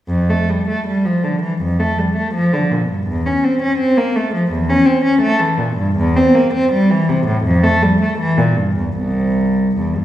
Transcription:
0, 0, Header, 1, 2, 480
1, 0, Start_track
1, 0, Key_signature, -1, "major"
1, 0, Tempo, 785340
1, 54, Time_signature, 4, 2, 24, 8
1, 531, Tempo, 742574
1, 1491, Tempo, 713436
1, 3411, Tempo, 744417
1, 5331, Tempo, 789474
1, 6463, End_track
2, 0, Start_track
2, 0, Title_t, "Cello"
2, 0, Program_c, 0, 42
2, 50, Note_on_c, 0, 41, 74
2, 175, Note_off_c, 0, 41, 0
2, 183, Note_on_c, 0, 57, 60
2, 302, Note_off_c, 0, 57, 0
2, 304, Note_on_c, 0, 55, 54
2, 418, Note_on_c, 0, 57, 61
2, 419, Note_off_c, 0, 55, 0
2, 529, Note_off_c, 0, 57, 0
2, 532, Note_on_c, 0, 55, 64
2, 649, Note_off_c, 0, 55, 0
2, 650, Note_on_c, 0, 53, 61
2, 770, Note_on_c, 0, 50, 58
2, 771, Note_off_c, 0, 53, 0
2, 889, Note_on_c, 0, 52, 59
2, 891, Note_off_c, 0, 50, 0
2, 1009, Note_off_c, 0, 52, 0
2, 1016, Note_on_c, 0, 41, 64
2, 1132, Note_on_c, 0, 57, 65
2, 1133, Note_off_c, 0, 41, 0
2, 1253, Note_off_c, 0, 57, 0
2, 1255, Note_on_c, 0, 55, 56
2, 1367, Note_on_c, 0, 57, 57
2, 1373, Note_off_c, 0, 55, 0
2, 1483, Note_on_c, 0, 53, 78
2, 1485, Note_off_c, 0, 57, 0
2, 1605, Note_off_c, 0, 53, 0
2, 1610, Note_on_c, 0, 50, 66
2, 1732, Note_off_c, 0, 50, 0
2, 1732, Note_on_c, 0, 46, 60
2, 1853, Note_on_c, 0, 43, 54
2, 1854, Note_off_c, 0, 46, 0
2, 1972, Note_off_c, 0, 43, 0
2, 1975, Note_on_c, 0, 40, 74
2, 2093, Note_off_c, 0, 40, 0
2, 2101, Note_on_c, 0, 61, 62
2, 2218, Note_off_c, 0, 61, 0
2, 2223, Note_on_c, 0, 60, 61
2, 2340, Note_off_c, 0, 60, 0
2, 2344, Note_on_c, 0, 61, 69
2, 2452, Note_on_c, 0, 60, 75
2, 2459, Note_off_c, 0, 61, 0
2, 2573, Note_off_c, 0, 60, 0
2, 2581, Note_on_c, 0, 58, 69
2, 2701, Note_off_c, 0, 58, 0
2, 2705, Note_on_c, 0, 57, 72
2, 2822, Note_off_c, 0, 57, 0
2, 2826, Note_on_c, 0, 53, 65
2, 2940, Note_off_c, 0, 53, 0
2, 2945, Note_on_c, 0, 40, 64
2, 3058, Note_off_c, 0, 40, 0
2, 3066, Note_on_c, 0, 61, 77
2, 3177, Note_on_c, 0, 60, 68
2, 3180, Note_off_c, 0, 61, 0
2, 3294, Note_off_c, 0, 60, 0
2, 3301, Note_on_c, 0, 61, 67
2, 3413, Note_off_c, 0, 61, 0
2, 3417, Note_on_c, 0, 57, 92
2, 3527, Note_off_c, 0, 57, 0
2, 3531, Note_on_c, 0, 52, 78
2, 3648, Note_off_c, 0, 52, 0
2, 3649, Note_on_c, 0, 46, 69
2, 3771, Note_off_c, 0, 46, 0
2, 3772, Note_on_c, 0, 43, 69
2, 3894, Note_off_c, 0, 43, 0
2, 3898, Note_on_c, 0, 40, 94
2, 4020, Note_off_c, 0, 40, 0
2, 4028, Note_on_c, 0, 60, 77
2, 4146, Note_off_c, 0, 60, 0
2, 4147, Note_on_c, 0, 58, 72
2, 4264, Note_off_c, 0, 58, 0
2, 4269, Note_on_c, 0, 60, 79
2, 4382, Note_off_c, 0, 60, 0
2, 4386, Note_on_c, 0, 55, 87
2, 4500, Note_off_c, 0, 55, 0
2, 4504, Note_on_c, 0, 52, 83
2, 4621, Note_off_c, 0, 52, 0
2, 4622, Note_on_c, 0, 48, 77
2, 4738, Note_on_c, 0, 45, 70
2, 4739, Note_off_c, 0, 48, 0
2, 4851, Note_on_c, 0, 41, 88
2, 4853, Note_off_c, 0, 45, 0
2, 4969, Note_off_c, 0, 41, 0
2, 4978, Note_on_c, 0, 57, 86
2, 5093, Note_off_c, 0, 57, 0
2, 5099, Note_on_c, 0, 55, 76
2, 5213, Note_off_c, 0, 55, 0
2, 5220, Note_on_c, 0, 57, 71
2, 5332, Note_on_c, 0, 52, 92
2, 5333, Note_off_c, 0, 57, 0
2, 5445, Note_off_c, 0, 52, 0
2, 5448, Note_on_c, 0, 46, 78
2, 5563, Note_on_c, 0, 43, 70
2, 5564, Note_off_c, 0, 46, 0
2, 5682, Note_off_c, 0, 43, 0
2, 5685, Note_on_c, 0, 40, 59
2, 5802, Note_off_c, 0, 40, 0
2, 5811, Note_on_c, 0, 36, 80
2, 6284, Note_off_c, 0, 36, 0
2, 6293, Note_on_c, 0, 40, 67
2, 6409, Note_off_c, 0, 40, 0
2, 6415, Note_on_c, 0, 43, 59
2, 6463, Note_off_c, 0, 43, 0
2, 6463, End_track
0, 0, End_of_file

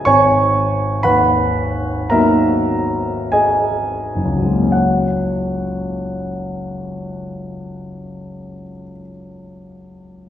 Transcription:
0, 0, Header, 1, 2, 480
1, 0, Start_track
1, 0, Tempo, 983607
1, 27, Time_signature, 4, 2, 24, 8
1, 507, Tempo, 1067616
1, 987, Tempo, 1212121
1, 1467, Tempo, 1392111
1, 2427, Tempo, 1411765
1, 3851, End_track
2, 0, Start_track
2, 0, Title_t, "Grand piano"
2, 0, Program_c, 0, 0
2, 0, Control_c, 0, 64, 127
2, 25, Note_on_c, 0, 85, 87
2, 29, Note_on_c, 0, 32, 52
2, 31, Note_on_c, 0, 73, 67
2, 34, Note_on_c, 0, 80, 69
2, 39, Control_c, 0, 64, 0
2, 140, Control_c, 0, 64, 127
2, 489, Note_off_c, 0, 73, 0
2, 491, Note_off_c, 0, 80, 0
2, 504, Note_on_c, 0, 83, 86
2, 506, Note_off_c, 0, 85, 0
2, 508, Note_on_c, 0, 78, 59
2, 510, Note_on_c, 0, 39, 39
2, 511, Note_on_c, 0, 71, 61
2, 969, Note_off_c, 0, 78, 0
2, 971, Note_off_c, 0, 71, 0
2, 983, Note_on_c, 0, 82, 80
2, 985, Note_off_c, 0, 83, 0
2, 988, Note_on_c, 0, 70, 61
2, 989, Note_on_c, 0, 54, 36
2, 989, Note_on_c, 0, 58, 38
2, 989, Note_on_c, 0, 76, 61
2, 991, Note_on_c, 0, 59, 36
2, 993, Note_on_c, 0, 63, 39
2, 1268, Note_off_c, 0, 39, 0
2, 1452, Note_off_c, 0, 70, 0
2, 1452, Note_off_c, 0, 76, 0
2, 1465, Note_off_c, 0, 82, 0
2, 1467, Note_on_c, 0, 80, 70
2, 1471, Note_on_c, 0, 68, 50
2, 1471, Note_on_c, 0, 75, 54
2, 1755, Note_on_c, 0, 30, 39
2, 1789, Note_on_c, 0, 37, 34
2, 1817, Note_off_c, 0, 54, 0
2, 1822, Note_on_c, 0, 54, 32
2, 1854, Note_on_c, 0, 56, 33
2, 1880, Note_off_c, 0, 58, 0
2, 1885, Note_on_c, 0, 58, 34
2, 1921, Note_on_c, 0, 61, 34
2, 1937, Note_off_c, 0, 32, 0
2, 1938, Note_off_c, 0, 59, 0
2, 1938, Note_off_c, 0, 68, 0
2, 1938, Note_off_c, 0, 75, 0
2, 1939, Note_off_c, 0, 63, 0
2, 1950, Note_off_c, 0, 80, 0
2, 1950, Note_on_c, 0, 78, 50
2, 1959, Control_c, 0, 64, 0
2, 2059, Control_c, 0, 64, 127
2, 3249, Note_off_c, 0, 30, 0
2, 3282, Note_off_c, 0, 37, 0
2, 3315, Note_off_c, 0, 54, 0
2, 3346, Note_off_c, 0, 56, 0
2, 3378, Note_off_c, 0, 58, 0
2, 3413, Note_off_c, 0, 61, 0
2, 3442, Note_off_c, 0, 78, 0
2, 3851, End_track
0, 0, End_of_file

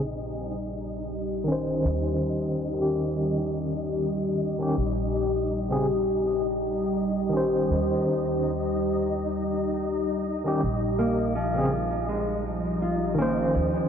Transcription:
0, 0, Header, 1, 6, 480
1, 0, Start_track
1, 0, Tempo, 731707
1, 1206, Time_signature, 4, 2, 24, 8
1, 9110, End_track
2, 0, Start_track
2, 0, Title_t, "Synth texture"
2, 0, Program_c, 0, 99
2, 0, Note_on_c, 0, 63, 76
2, 0, Note_on_c, 0, 75, 77
2, 9110, Note_off_c, 0, 63, 0
2, 9110, Note_off_c, 0, 75, 0
2, 9110, End_track
3, 0, Start_track
3, 0, Title_t, "Ambient pad"
3, 0, Program_c, 1, 92
3, 0, Note_on_c, 1, 55, 82
3, 0, Note_on_c, 1, 67, 85
3, 6961, Note_off_c, 1, 67, 0
3, 6968, Note_on_c, 1, 53, 85
3, 6969, Note_on_c, 1, 67, 84
3, 6974, Note_off_c, 1, 55, 0
3, 9110, Note_off_c, 1, 53, 0
3, 9110, Note_off_c, 1, 67, 0
3, 9110, End_track
4, 0, Start_track
4, 0, Title_t, "Tine electric piano"
4, 0, Program_c, 2, 4
4, 944, Note_on_c, 2, 51, 70
4, 969, Note_on_c, 2, 61, 65
4, 995, Note_on_c, 2, 72, 72
4, 1775, Note_off_c, 2, 51, 0
4, 1788, Note_off_c, 2, 61, 0
4, 1797, Note_on_c, 2, 51, 64
4, 1801, Note_off_c, 2, 72, 0
4, 1824, Note_on_c, 2, 61, 55
4, 1847, Note_on_c, 2, 67, 68
4, 2976, Note_off_c, 2, 51, 0
4, 2990, Note_off_c, 2, 61, 0
4, 3001, Note_off_c, 2, 67, 0
4, 3009, Note_on_c, 2, 51, 74
4, 3021, Note_on_c, 2, 61, 73
4, 3033, Note_on_c, 2, 67, 84
4, 3108, Note_off_c, 2, 51, 0
4, 3114, Note_off_c, 2, 61, 0
4, 3121, Note_off_c, 2, 67, 0
4, 3729, Note_on_c, 2, 49, 74
4, 3742, Note_on_c, 2, 60, 70
4, 3754, Note_on_c, 2, 68, 88
4, 3828, Note_off_c, 2, 49, 0
4, 3835, Note_off_c, 2, 60, 0
4, 3841, Note_off_c, 2, 68, 0
4, 4784, Note_on_c, 2, 51, 69
4, 4808, Note_on_c, 2, 61, 68
4, 4833, Note_on_c, 2, 72, 76
4, 5615, Note_off_c, 2, 51, 0
4, 5628, Note_off_c, 2, 61, 0
4, 5640, Note_off_c, 2, 72, 0
4, 6849, Note_on_c, 2, 51, 76
4, 6861, Note_on_c, 2, 61, 66
4, 6873, Note_on_c, 2, 67, 82
4, 6949, Note_off_c, 2, 51, 0
4, 6954, Note_off_c, 2, 61, 0
4, 6960, Note_off_c, 2, 67, 0
4, 7570, Note_on_c, 2, 49, 75
4, 7582, Note_on_c, 2, 60, 68
4, 7595, Note_on_c, 2, 68, 86
4, 7669, Note_off_c, 2, 49, 0
4, 7675, Note_off_c, 2, 60, 0
4, 7681, Note_off_c, 2, 68, 0
4, 8622, Note_on_c, 2, 51, 70
4, 8648, Note_on_c, 2, 61, 68
4, 8672, Note_on_c, 2, 72, 82
4, 9110, Note_off_c, 2, 51, 0
4, 9110, Note_off_c, 2, 61, 0
4, 9110, Note_off_c, 2, 72, 0
4, 9110, End_track
5, 0, Start_track
5, 0, Title_t, "Nylon-string guitar"
5, 0, Program_c, 3, 24
5, 7207, Note_on_c, 3, 58, 89
5, 7425, Note_off_c, 3, 58, 0
5, 7448, Note_on_c, 3, 53, 83
5, 7906, Note_off_c, 3, 53, 0
5, 7926, Note_on_c, 3, 56, 67
5, 8156, Note_off_c, 3, 56, 0
5, 8409, Note_on_c, 3, 65, 70
5, 8555, Note_off_c, 3, 65, 0
5, 8648, Note_on_c, 3, 58, 67
5, 8887, Note_off_c, 3, 58, 0
5, 9110, End_track
6, 0, Start_track
6, 0, Title_t, "Upright bass"
6, 0, Program_c, 4, 32
6, 0, Note_on_c, 4, 34, 73
6, 1186, Note_off_c, 4, 34, 0
6, 1208, Note_on_c, 4, 39, 72
6, 3106, Note_off_c, 4, 39, 0
6, 3125, Note_on_c, 4, 34, 69
6, 5024, Note_off_c, 4, 34, 0
6, 5047, Note_on_c, 4, 39, 72
6, 6945, Note_off_c, 4, 39, 0
6, 6969, Note_on_c, 4, 34, 77
6, 8866, Note_off_c, 4, 34, 0
6, 8888, Note_on_c, 4, 39, 79
6, 9110, Note_off_c, 4, 39, 0
6, 9110, End_track
0, 0, End_of_file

